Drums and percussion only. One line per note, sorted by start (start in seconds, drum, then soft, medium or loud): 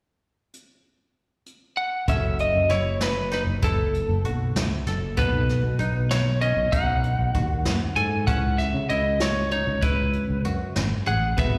0.54 closed hi-hat soft
1.46 closed hi-hat soft
2.08 kick medium
2.08 closed hi-hat medium
2.39 closed hi-hat medium
2.70 snare soft
2.70 closed hi-hat medium
3.01 snare medium
3.01 closed hi-hat medium
3.32 snare soft
3.32 closed hi-hat soft
3.63 kick medium
3.63 closed hi-hat medium
3.94 closed hi-hat medium
4.25 closed hi-hat medium
4.56 snare loud
4.56 closed hi-hat medium
4.87 snare soft
4.87 closed hi-hat medium
5.18 kick medium
5.18 closed hi-hat medium
5.49 snare soft
5.49 closed hi-hat soft
5.80 closed hi-hat medium
6.11 snare medium
6.11 closed hi-hat medium
6.42 closed hi-hat soft
6.73 kick loud
6.73 closed hi-hat medium
7.04 closed hi-hat soft
7.34 kick medium
7.34 closed hi-hat medium
7.65 snare medium
7.65 closed hi-hat medium
7.96 closed hi-hat medium
8.27 kick medium
8.27 closed hi-hat medium
8.58 snare soft
8.58 closed hi-hat medium
8.89 closed hi-hat medium
9.20 snare medium
9.20 closed hi-hat medium
9.51 closed hi-hat medium
9.82 kick loud
9.82 closed hi-hat medium
10.13 closed hi-hat soft
10.45 closed hi-hat medium
10.76 snare medium
10.76 closed hi-hat medium
11.07 closed hi-hat soft
11.38 kick loud
11.38 closed hi-hat medium